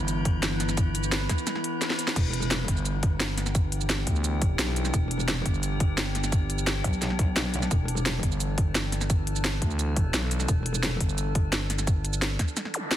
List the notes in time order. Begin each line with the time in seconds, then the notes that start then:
Already playing: G1 E3 B3 E4 B4
0.08 closed hi-hat, shaker
0.25 kick, closed hi-hat
0.43 snare, closed hi-hat, shaker
0.60 snare, closed hi-hat, shaker
0.69 snare, shaker
0.77 kick, closed hi-hat, shaker
0.95 closed hi-hat, shaker
1.03 shaker
1.12 snare, closed hi-hat, shaker
1.29 kick, snare, closed hi-hat, shaker
1.38 shaker
1.47 snare, closed hi-hat, shaker
1.55 snare
1.64 closed hi-hat
1.82 snare, closed hi-hat, shaker
1.90 snare
1.99 closed hi-hat, shaker
2.08 snare, shaker
2.16 E1 D4 G4, kick, closed hi-hat, crash, shaker
2.33 closed hi-hat
2.42 shaker
2.51 snare, closed hi-hat, shaker
2.68 G1, kick, closed hi-hat
2.77 shaker
2.85 closed hi-hat, shaker
3.03 kick, closed hi-hat
3.20 snare, closed hi-hat, shaker
3.38 snare, closed hi-hat, shaker
3.46 snare, shaker
3.55 kick, closed hi-hat, shaker
3.72 closed hi-hat
3.81 shaker
3.90 snare, closed hi-hat, shaker
4.07 D2, kick, closed hi-hat
4.16 shaker
4.24 closed hi-hat, shaker
4.42 kick, closed hi-hat
4.59 B1, snare, closed hi-hat, shaker
4.76 closed hi-hat, shaker
4.85 snare, shaker
4.94 E1, kick, closed hi-hat, shaker
5.11 closed hi-hat
5.20 shaker
5.28 snare, closed hi-hat, shaker
5.46 G1, kick, closed hi-hat
5.54 shaker
5.63 closed hi-hat, shaker
5.80 kick, closed hi-hat
5.98 snare, closed hi-hat, shaker
6.15 snare, closed hi-hat, shaker
6.24 snare, shaker
6.32 kick, closed hi-hat, shaker
6.50 closed hi-hat, shaker
6.58 shaker
6.67 snare, closed hi-hat, shaker
6.84 B1, kick, closed hi-hat
6.93 shaker
7.02 snare, closed hi-hat, shaker
7.10 snare
7.19 kick, closed hi-hat
7.36 snare, closed hi-hat, shaker
7.54 closed hi-hat, shaker
7.62 snare, shaker
7.71 E1 A4, kick, closed hi-hat, shaker
7.88 closed hi-hat
7.97 shaker
8.06 snare, closed hi-hat, shaker
8.23 G1, kick, closed hi-hat
8.32 shaker
8.40 closed hi-hat, shaker
8.58 kick, closed hi-hat
8.75 snare, closed hi-hat, shaker
8.92 snare, closed hi-hat, shaker
9.01 snare, shaker
9.10 kick, closed hi-hat, shaker
9.27 closed hi-hat
9.36 shaker
9.44 snare, closed hi-hat, shaker
9.62 D2, kick, closed hi-hat
9.71 shaker
9.79 closed hi-hat, shaker
9.96 kick, closed hi-hat
10.14 B1, snare, closed hi-hat, shaker
10.31 closed hi-hat, shaker
10.40 snare, shaker
10.48 E1, kick, closed hi-hat, shaker
10.66 closed hi-hat
10.75 shaker
10.83 snare, closed hi-hat, shaker
11.01 G1, kick, closed hi-hat
11.09 shaker
11.18 closed hi-hat, shaker
11.35 kick, closed hi-hat
11.53 snare, closed hi-hat, shaker
11.70 snare, closed hi-hat, shaker
11.79 snare, shaker
11.87 kick, closed hi-hat, shaker
12.05 closed hi-hat, shaker
12.13 shaker
12.22 snare, closed hi-hat, shaker
12.39 kick, snare, closed hi-hat, shaker
12.48 shaker
12.57 snare, closed hi-hat, shaker
12.65 snare
12.74 closed hi-hat, zap
12.91 snare, closed hi-hat, shaker